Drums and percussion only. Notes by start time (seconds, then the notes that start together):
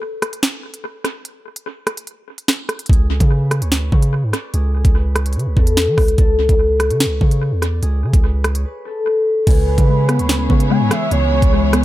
0.22 cross-stick, closed hi-hat
0.33 closed hi-hat
0.43 snare, closed hi-hat
0.74 closed hi-hat
1.04 cross-stick, closed hi-hat
1.25 closed hi-hat
1.56 closed hi-hat
1.87 cross-stick, closed hi-hat
1.97 closed hi-hat
2.07 closed hi-hat
2.38 closed hi-hat
2.48 snare
2.69 cross-stick, closed hi-hat
2.79 closed hi-hat
2.86 kick, closed hi-hat
2.93 closed hi-hat
3.20 kick, closed hi-hat
3.51 cross-stick, closed hi-hat
3.62 closed hi-hat
3.72 snare, closed hi-hat
3.92 kick
4.02 closed hi-hat
4.33 cross-stick, closed hi-hat
4.54 closed hi-hat
4.85 kick, closed hi-hat
5.16 cross-stick, closed hi-hat
5.26 closed hi-hat
5.33 closed hi-hat
5.39 closed hi-hat
5.57 kick
5.67 closed hi-hat
5.77 snare
5.98 kick, cross-stick, open hi-hat
6.08 closed hi-hat
6.18 kick, closed hi-hat
6.49 kick, closed hi-hat
6.80 cross-stick, closed hi-hat
6.91 closed hi-hat
7.00 snare, closed hi-hat
7.21 kick
7.31 closed hi-hat
7.62 cross-stick, closed hi-hat
7.83 closed hi-hat
8.13 kick, closed hi-hat
8.44 cross-stick, closed hi-hat
8.55 closed hi-hat
9.47 kick, closed hi-hat, crash
9.51 closed hi-hat
9.78 kick, closed hi-hat
10.09 cross-stick, closed hi-hat
10.19 closed hi-hat
10.29 snare, closed hi-hat
10.50 kick
10.60 closed hi-hat
10.91 cross-stick, closed hi-hat
11.11 closed hi-hat
11.42 kick, closed hi-hat
11.73 cross-stick, closed hi-hat